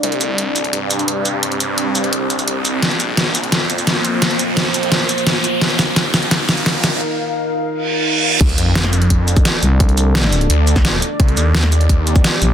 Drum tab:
CC |----------------|----------------|----------------|----------------|
HH |xxx-x-xxx-xxx-x-|xxx-x-xxx-xxx-x-|xxx-x-xxx-xxx-x-|xxx-x-xxx-xxx-x-|
SH |--x---x---xx--x-|--x---x---xx--x-|--x---x---xx--x-|--x---x---xx--x-|
SD |----------------|----------------|o---o---o---o---|o---o---o---o---|
BD |----------------|----------------|----------------|----------------|

CC |----------------|----------------|x---------------|----------------|
HH |xxx-x-xxx-xxx-x-|----------------|xxx-x-xxx-xxx-x-|xxx-x-xxx-xxx-x-|
SH |--x---x---xx--x-|----------------|--x---x---xx--x-|--x---x---xx--x-|
SD |o-o-o-o-o-o-o-o-|----------------|----oo------o---|----oo-----oo---|
BD |----------------|----------------|o-------o--o----|o----------o----|

CC |----------------|
HH |xxx-x-xxx-xxx-x-|
SH |--x---x---xx--x-|
SD |----oo------o---|
BD |o-------o--o----|